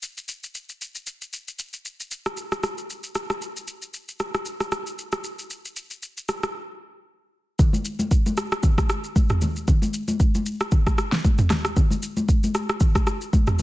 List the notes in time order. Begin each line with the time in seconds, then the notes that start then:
0.03 shaker
0.17 shaker
0.28 shaker
0.44 shaker
0.55 shaker
0.69 shaker
0.81 shaker
0.95 shaker
1.07 shaker
1.22 shaker
1.33 shaker
1.48 shaker
1.59 shaker
1.73 shaker
1.85 shaker
2.00 shaker
2.11 shaker
2.26 cross-stick, shaker
2.37 shaker
2.52 cross-stick, shaker
2.63 cross-stick, shaker
2.78 shaker
2.90 shaker
3.04 shaker
3.15 cross-stick, shaker
3.30 cross-stick, shaker
3.42 shaker
3.56 shaker
3.68 shaker
3.82 shaker
3.94 shaker
4.09 shaker
4.20 cross-stick, shaker
4.34 cross-stick, shaker
4.45 shaker
4.60 cross-stick, shaker
4.72 cross-stick, shaker
4.87 shaker
4.99 shaker
5.12 cross-stick, shaker
5.24 shaker
5.39 shaker
5.50 shaker
5.65 shaker
5.76 shaker
5.91 shaker
6.03 shaker
6.17 shaker
6.29 cross-stick, shaker
6.43 cross-stick, shaker
7.59 kick, low conga, shaker
7.73 high conga, shaker
7.85 shaker
7.99 high conga, shaker
8.11 kick, shaker
8.26 high conga, shaker
8.37 cross-stick, shaker
8.52 cross-stick, shaker
8.63 kick, low conga, shaker
8.78 kick, cross-stick, high conga, shaker
8.89 cross-stick, shaker
9.04 shaker
9.16 kick, high conga, shaker
9.30 cross-stick, mid tom, shaker
9.41 high conga, low conga, shaker
9.56 shaker
9.68 kick, low conga, shaker
9.82 high conga, shaker
9.94 shaker
10.08 high conga, shaker
10.20 kick, shaker
10.35 high conga, shaker
10.46 shaker
10.61 cross-stick, shaker
10.72 kick, low conga, shaker
10.87 kick, cross-stick, high conga, shaker
10.98 cross-stick, shaker
11.12 snare, shaker
11.24 kick, high conga, shaker
11.38 mid tom, shaker
11.50 cross-stick, snare, high conga, low conga, shaker
11.65 cross-stick, shaker
11.76 kick, low conga, shaker
11.90 high conga, shaker
12.03 shaker
12.17 high conga, shaker
12.29 kick, shaker
12.44 high conga, shaker
12.55 cross-stick, shaker
12.69 cross-stick, shaker
12.80 kick, low conga, shaker
12.95 kick, cross-stick, high conga, shaker
13.07 cross-stick, shaker
13.21 shaker
13.33 kick, high conga, shaker
13.47 cross-stick, mid tom, shaker
13.59 shaker